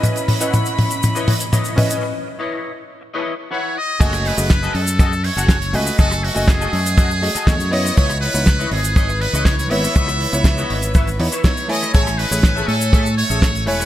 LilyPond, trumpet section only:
\new Staff \with { instrumentName = "Trumpet section" } { \time 4/4 \key fis \dorian \tempo 4 = 121 r1 | r2. cis''8 dis''8 | cis''8 b'4 a'4 cis''4 b'8 | a'8 fis'8 gis'2 cis''8 dis''8 |
cis''8 b'4 gis'4 b'8 cis''16 cis''16 e''8~ | e''2~ e''8 r8 cis''8 dis''8 | cis''8 b'4 a'4 cis''4 b'8 | }